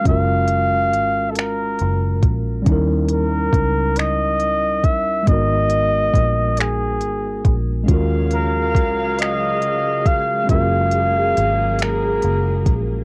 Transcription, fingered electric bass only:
X:1
M:6/8
L:1/8
Q:3/8=46
K:Ebm
V:1 name="Fingered electric bass" clef=bass
G,,,2 A,,,2 G,,, B,,, | E,,2 D,,4 | A,,,2 B,,,2 A,,, B,,, | E,,2 D,,4 |
G,,,2 A,,,2 G,,, B,,, |]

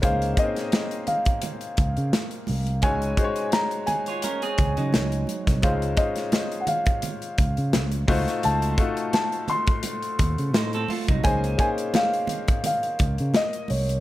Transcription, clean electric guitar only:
X:1
M:4/4
L:1/16
Q:"Swing 16ths" 1/4=86
K:Bbm
V:1 name="Clean electric guitar"
z16 | z6 z [Fd] [DB] [CA]2 [G,E]4- [G,E] | z16 | z12 [Ec] [C=A] [=A,F] [G,E]- |
[G,E] z12 z3 |]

